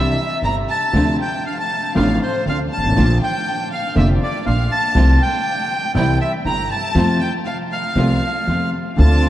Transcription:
Already playing: upright piano C2 C3 E3 G3 D4, upright bass C2, string section C4 D4 E4, violin section E5, bandoneon E5
0.42 upright piano G1 G2, upright bass G1, string section C4 D4 E4, violin section A#5, bandoneon A#5
0.70 violin section A5, bandoneon A5
0.93 upright piano D2 C3 D3 F3 A3 D4, upright bass D2, string section C4 D4 F4
1.21 violin section G5, bandoneon G5
1.46 violin section F5, bandoneon F5
1.59 violin section A5, bandoneon A5
1.95 upright piano A1 A2 C3 F3 A3 D4, upright bass A1, string section C4 D4 F4, bandoneon F5, violin section F5
2.22 violin section C5, bandoneon C5
2.45 upright piano D2 D3, upright bass D2, string section C4 D4 F4, violin section F5
2.49 bandoneon F5
2.72 violin section A5, bandoneon A5
2.77 upright piano G1, upright bass G1
2.83 upright piano G#1, upright bass G#1
2.89 upright piano A1, upright bass A1
2.96 upright piano A#1 A#2 D3 F3 A#3 F4, upright bass A#1, string section A#3 D4 F4
3.22 violin section G5, bandoneon G5
3.73 violin section F5, bandoneon F5
3.95 upright piano F1 F2 D3 F3 A#3 F4, upright bass F1, string section A#3 D4 F4, violin section E5, bandoneon E5
4.23 violin section D5, bandoneon D5
4.46 upright piano A#1 A#2, upright bass A#1, string section A#3 D4 F4, bandoneon F5, violin section F5
4.72 bandoneon A5, violin section A5
4.95 upright piano C2 C3 F3 A3 F4, upright bass C2, string section A3 C4 F4
5.21 violin section G5, bandoneon G5
5.94 upright bass C2, upright piano C2 C3 E3 G3 E4, string section G3 C4 E4, violin section G5, bandoneon G5
6.21 violin section E5, bandoneon E5
6.45 upright bass G1, upright piano G1 G2, string section G3 C4 E4, violin section A#5, bandoneon A#5
6.71 violin section A5, bandoneon A5
6.95 upright bass F2, upright piano F2 C3 F3 A3 F4, string section A3 C4 F4
7.20 violin section G5, bandoneon G5
7.45 violin section F5, bandoneon F5
7.70 violin section F5, bandoneon F5
7.96 upright bass C2, upright piano C2 C3 F3 A3 F4, string section A3 C4 F4
8.47 upright bass F2, upright piano F2 F3, string section A3 C4 F4
8.96 upright piano D2 D3 A3 C4 F4, upright bass D2, string section C4 D4 F4, violin section A5, bandoneon A5

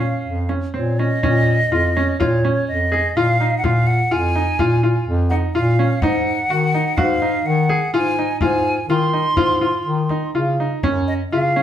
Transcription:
Already playing: bass clarinet A#2, flute F5
0.00 grand piano C#4, frame drum
0.23 bass clarinet F2
0.49 grand piano C#4, frame drum
0.73 bass clarinet A#2, grand piano C4, flute C#5, frame drum
0.99 grand piano C#4, flute D#5
1.22 bass clarinet A#2, grand piano C#4, frame drum
1.71 bass clarinet F2, grand piano F4
1.97 grand piano C#4
2.19 bass clarinet A#2, grand piano F4, flute C#5, frame drum
2.44 grand piano C#4
2.67 bass clarinet F2, flute D#5
2.92 grand piano G#4, frame drum
3.15 bass clarinet A#2, grand piano F4, flute F5
3.40 grand piano D#4
3.58 flute F#5
3.64 bass clarinet A#2, grand piano F4, flute F5, frame drum
3.87 flute F#5, frame drum
4.11 bass clarinet F2, grand piano F4, flute G#5
4.36 grand piano D#4
4.59 bass clarinet A#2, grand piano F4, frame drum
4.83 grand piano F4
5.07 bass clarinet F2
5.29 grand piano D#4, flute F#5, frame drum
5.54 bass clarinet A#2, grand piano F4, flute F5
5.79 grand piano C#4
6.00 bass clarinet G#2, grand piano D#4, flute F#5, frame drum
6.26 frame drum
6.49 bass clarinet D#3, grand piano F#4
6.74 grand piano D#4
6.96 bass clarinet G#2, grand piano F#4, flute F5, frame drum
7.22 grand piano D#4
7.44 bass clarinet D#3, flute F#5
7.69 grand piano G#4, frame drum
7.92 bass clarinet G#2, grand piano F4, flute G#5
8.19 grand piano D#4
8.41 bass clarinet G#2, grand piano F4, flute G#5, frame drum
8.88 bass clarinet D#3, grand piano F4, flute C6, frame drum
9.13 grand piano D#4
9.36 bass clarinet G#2, grand piano F4, frame drum
9.60 grand piano F4, frame drum
9.85 bass clarinet D#3
10.09 grand piano D#4, frame drum
10.34 bass clarinet C#3, grand piano F4, frame drum
10.60 grand piano D#4
10.83 bass clarinet F#2, grand piano C#4, frame drum
11.08 flute D#5
11.31 bass clarinet C#3, grand piano F4, flute F5
11.56 grand piano C#4

